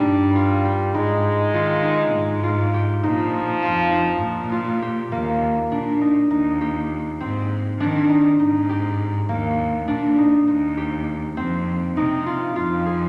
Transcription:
0.00 0.96 G3 medium
0.00 1.00 D4 medium
0.00 0.35 F4 medium
0.00 0.65 G4 medium
0.05 0.85 G2 medium
0.35 1.54 F4 medium
0.65 2.74 G4 medium
0.94 1.48 G#2 medium
0.94 2.76 G#3 loud
0.94 1.83 D#4 medium
1.54 2.16 D#3 medium
1.54 2.43 F4 medium
1.84 3.03 D#4 medium
2.14 2.94 G#2 medium
2.43 3.62 F4 medium
2.74 4.82 G4 medium
3.03 3.57 A#2 medium
3.03 4.78 F3 loud
3.03 3.91 D#4 medium
3.63 4.24 F2 medium
3.63 4.51 F4 medium
3.92 5.78 D#4 medium
4.23 5.02 A#2 medium
4.52 7.04 F4 medium
4.82 6.61 G4 medium
5.12 5.65 D#2 medium
5.12 8.33 A#3 medium
5.71 6.25 A#2 medium
5.71 6.07 D4 medium
6.01 6.30 D#4 medium
6.30 7.10 D#2 medium
6.30 7.86 D#4 medium
6.61 8.69 G4 medium
7.20 7.73 G#2 medium
7.20 10.20 C4 medium
7.80 8.33 D#3 medium
7.80 8.15 D4 medium
8.09 8.39 D#4 medium
8.40 9.19 G#2 medium
8.40 9.94 D#4 medium
8.69 10.77 G4 medium
9.29 9.82 D#2 medium
9.29 12.50 A#3 medium
9.88 10.42 A#2 medium
9.88 10.24 D4 medium
10.18 10.47 D#4 medium
10.47 11.28 D#2 medium
10.47 11.97 D#4 medium
10.77 12.92 G4 medium
11.37 11.90 F2 medium
11.37 13.09 C4 medium
11.97 12.49 C3 medium
11.97 13.09 D#4 medium
12.26 12.55 F4 medium
12.56 13.09 F2 medium
12.56 13.09 F4 medium
12.86 13.09 G#4 medium

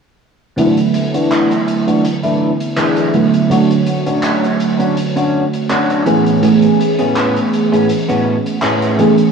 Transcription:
0.56 3.09 D3 medium
0.56 0.77 E3 medium
0.56 3.10 F#3 medium
0.56 3.10 A3 medium
0.56 0.77 A3 medium
0.56 3.10 B3 medium
0.56 0.77 D4 medium
0.56 3.11 E4 medium
0.56 0.78 F#4 loud
0.56 closed hi-hat medium
0.77 closed hi-hat medium
0.94 muted clean electric guitar stroke soft
0.94 closed hi-hat medium
1.14 1.50 E3 medium
1.14 1.51 A3 medium
1.14 1.51 D4 medium
1.14 1.51 F#4 medium
1.14 closed hi-hat medium
1.31 clap loud
1.31 closed hi-hat medium
1.51 closed hi-hat soft
1.68 closed hi-hat medium
1.87 2.04 E3 medium
1.87 2.04 A3 medium
1.87 2.04 D4 medium
1.87 2.04 F#4 medium
1.87 closed hi-hat medium
2.05 closed hi-hat medium
2.23 2.50 E3 medium
2.23 2.50 A3 medium
2.23 2.51 D4 medium
2.23 2.50 E4 loud
2.23 closed hi-hat soft
2.60 closed hi-hat medium
2.77 3.14 E3 medium
2.77 3.14 A3 medium
2.77 3.14 D4 medium
2.77 3.14 G#4 medium
2.77 clap loud
2.77 closed hi-hat medium
2.96 closed hi-hat soft
3.13 3.46 D3 medium
3.13 3.46 F#3 medium
3.13 3.46 A3 medium
3.13 3.47 B3 medium
3.13 3.47 E4 medium
3.13 closed hi-hat medium
3.34 closed hi-hat soft
3.49 6.02 D3 medium
3.49 6.02 F#3 medium
3.49 6.03 A3 medium
3.49 3.70 C#4 medium
3.49 3.70 D4 medium
3.49 3.70 F#4 loud
3.49 6.03 F#4 medium
3.49 6.03 C#5 medium
3.49 closed hi-hat loud
3.70 closed hi-hat medium
3.86 muted clean electric guitar stroke soft
3.86 closed hi-hat medium
4.06 4.43 C#4 medium
4.06 4.43 D4 medium
4.06 4.43 F#4 medium
4.06 closed hi-hat medium
4.23 clap loud
4.23 closed hi-hat loud
4.44 closed hi-hat soft
4.60 closed hi-hat medium
4.79 4.97 C#4 medium
4.79 4.97 D4 medium
4.79 4.97 F#4 medium
4.79 closed hi-hat soft
4.97 closed hi-hat medium
5.16 5.43 C#4 loud
5.16 5.43 D4 medium
5.16 5.43 F#4 loud
5.16 closed hi-hat soft
5.53 closed hi-hat soft
5.69 6.05 C#4 medium
5.69 6.06 D4 medium
5.69 6.06 F#4 medium
5.69 clap loud
5.69 closed hi-hat medium
5.90 closed hi-hat soft
6.06 6.66 A2 medium
6.06 6.39 E3 medium
6.06 6.39 A3 medium
6.06 6.66 B3 medium
6.06 6.39 B3 medium
6.06 6.39 C#4 medium
6.06 6.66 C#4 medium
6.06 6.66 G#4 medium
6.06 6.39 G#4 medium
6.06 closed hi-hat medium
6.27 closed hi-hat soft
6.42 8.94 E3 medium
6.42 8.95 A3 medium
6.42 8.95 B3 medium
6.42 8.96 C#4 medium
6.42 8.96 G#4 medium
6.42 closed hi-hat medium
6.62 closed hi-hat medium
6.79 muted clean electric guitar stroke soft
6.79 closed hi-hat medium
6.99 7.36 A2 medium
6.99 7.36 B3 medium
6.99 7.36 C#4 medium
6.99 7.36 G#4 medium
6.99 closed hi-hat medium
7.16 clap loud
7.16 closed hi-hat medium
7.36 closed hi-hat soft
7.53 closed hi-hat medium
7.72 7.89 A2 medium
7.72 7.89 B3 medium
7.72 7.89 C#4 medium
7.72 7.89 G#4 medium
7.72 closed hi-hat soft
7.89 closed hi-hat medium
8.08 8.36 A2 medium
8.08 8.36 B3 medium
8.08 8.36 C#4 medium
8.08 8.36 F#4 loud
8.08 closed hi-hat medium
8.46 closed hi-hat soft
8.62 8.99 A2 medium
8.62 8.99 B3 medium
8.62 8.99 C#4 medium
8.62 8.99 G#4 medium
8.62 clap loud
8.62 closed hi-hat medium
8.82 closed hi-hat soft
8.98 9.31 E3 medium
8.98 9.32 A3 medium
8.98 9.32 B3 medium
8.98 9.32 C#4 medium
8.98 9.32 G#4 medium
8.98 closed hi-hat medium
9.18 closed hi-hat medium

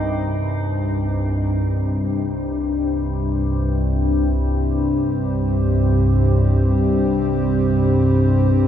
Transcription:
0.00 0.34 C2 medium
0.00 0.34 G2 medium
0.00 0.34 D#4 medium
0.00 2.66 D#4 medium
0.00 2.14 A#4 medium
0.00 3.33 D#5 medium
0.33 8.68 C2 medium
0.33 8.68 G2 medium
0.33 8.68 C4 medium
1.59 8.68 C5 medium
1.83 8.68 G4 medium

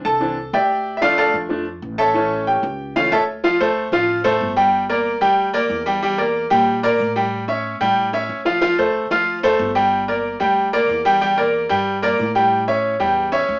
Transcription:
0.00 0.19 E3 medium
0.00 0.19 C4 medium
0.00 0.19 D4 medium
0.05 0.50 C2 medium
0.05 0.50 A4 medium
0.05 0.50 A5 loud
0.20 0.35 E3 soft
0.20 0.35 C4 soft
0.20 0.35 D4 medium
0.53 1.28 D2 loud
0.53 0.99 G4 medium
0.53 0.99 D5 medium
0.53 0.96 E5 medium
0.53 0.98 G5 medium
0.97 1.00 E5 medium
1.01 1.48 F3 medium
1.01 1.48 A3 medium
1.01 1.49 D4 medium
1.01 1.18 F4 medium
1.01 1.17 A4 medium
1.01 1.17 D5 medium
1.01 1.17 F5 loud
1.18 1.34 A4 medium
1.18 1.34 D5 medium
1.18 1.34 F5 medium
1.18 1.34 A5 medium
1.34 1.79 F2 medium
1.49 1.64 F3 medium
1.49 1.64 A3 soft
1.49 1.65 D4 medium
1.82 2.57 A1 medium
1.98 2.44 A4 medium
1.98 2.44 C#5 medium
1.98 2.44 E5 medium
1.98 2.43 A5 loud
2.14 2.60 E3 medium
2.14 2.61 A3 medium
2.14 2.61 C#4 medium
2.47 2.92 G4 medium
2.47 2.92 G5 medium
2.63 3.08 C#2 loud
2.96 3.10 E3 medium
2.96 3.10 A3 soft
2.96 3.10 C#4 medium
2.96 3.12 F4 medium
2.96 3.11 F5 loud
3.12 3.87 D2 loud
3.12 3.22 A4 medium
3.12 3.22 C#5 medium
3.12 3.22 E5 medium
3.12 3.21 A5 loud
3.44 3.57 F3 medium
3.44 3.57 F4 medium
3.44 3.57 F5 medium
3.60 3.87 A3 medium
3.60 3.87 A4 medium
3.60 3.87 C5 medium
3.92 4.37 A1 medium
3.92 4.19 F3 medium
3.92 4.19 F4 medium
3.92 4.19 F5 medium
4.24 4.51 A3 medium
4.24 4.51 A4 medium
4.24 4.51 C5 medium
4.41 5.16 G1 medium
4.56 4.83 G3 medium
4.56 4.83 G4 medium
4.56 4.83 G5 medium
4.89 5.16 A#3 medium
4.89 5.16 A#4 medium
4.89 5.16 D5 medium
5.21 5.67 D2 medium
5.21 5.48 G3 medium
5.21 5.48 G4 loud
5.21 5.48 G5 medium
5.54 5.80 A#3 medium
5.54 5.81 A#4 medium
5.54 5.80 D5 medium
5.70 6.45 E2 medium
5.86 5.99 G3 medium
5.86 5.99 G4 medium
5.86 6.00 G5 loud
6.03 6.16 G3 medium
6.03 6.16 G4 medium
6.03 6.16 G5 medium
6.18 6.45 A#3 medium
6.18 6.45 A#4 medium
6.18 6.45 D5 medium
6.50 6.96 A#2 loud
6.50 6.77 G3 medium
6.50 6.77 G4 medium
6.50 6.78 G5 medium
6.83 7.10 A#3 medium
6.83 7.10 A#4 medium
6.83 7.10 D5 medium
7.00 7.75 A2 loud
7.16 7.42 G3 medium
7.16 7.43 G4 medium
7.16 7.43 G5 medium
7.48 7.75 C#4 medium
7.48 7.75 C#5 medium
7.48 7.75 E5 medium
7.81 8.26 A2 medium
7.81 8.07 G3 medium
7.81 8.07 G4 medium
7.81 8.08 G5 medium
8.13 8.40 C#4 medium
8.13 8.40 C#5 medium
8.13 8.40 E5 medium
8.29 9.05 D2 medium
8.45 8.59 F3 medium
8.45 8.59 F4 medium
8.45 8.59 F5 medium
8.62 8.75 F3 medium
8.62 8.75 F4 loud
8.62 8.75 F5 medium
8.78 9.05 A3 medium
8.78 9.05 A4 medium
8.78 9.05 C5 medium
9.11 9.56 D2 loud
9.11 9.37 F3 medium
9.11 9.38 F4 medium
9.11 9.38 F5 medium
9.43 9.70 A3 medium
9.43 9.70 A4 medium
9.43 9.70 C5 medium
9.59 10.35 G1 loud
9.75 10.02 G3 medium
9.75 10.02 G4 medium
9.75 10.02 G5 medium
10.08 10.35 A#3 medium
10.08 10.35 A#4 medium
10.08 10.35 D5 medium
10.40 10.86 D2 medium
10.40 10.67 G3 medium
10.40 10.67 G4 medium
10.40 10.67 G5 medium
10.73 11.00 A#3 medium
10.73 11.00 A#4 medium
10.73 11.00 D5 medium
10.89 11.65 E2 medium
11.05 11.19 G3 medium
11.05 11.19 G4 medium
11.05 11.19 G5 loud
11.21 11.35 G3 medium
11.21 11.35 G4 medium
11.21 11.35 G5 medium
11.37 11.64 A#3 medium
11.37 11.64 A#4 medium
11.37 11.65 D5 medium
11.69 12.16 G2 medium
11.69 11.96 G3 medium
11.69 11.97 G4 medium
11.69 11.97 G5 medium
12.02 12.29 A#3 medium
12.02 12.29 A#4 medium
12.02 12.30 D5 medium
12.19 12.95 A2 loud
12.35 12.62 G3 medium
12.35 12.62 G4 medium
12.35 12.62 G5 medium
12.68 12.94 C#4 medium
12.68 12.94 C#5 medium
12.68 12.94 E5 medium
13.00 13.45 E2 medium
13.00 13.26 G3 medium
13.00 13.27 G4 medium
13.00 13.27 G5 medium
13.32 13.59 C#4 medium
13.32 13.59 C#5 medium
13.32 13.59 E5 medium
13.49 13.60 D2 medium

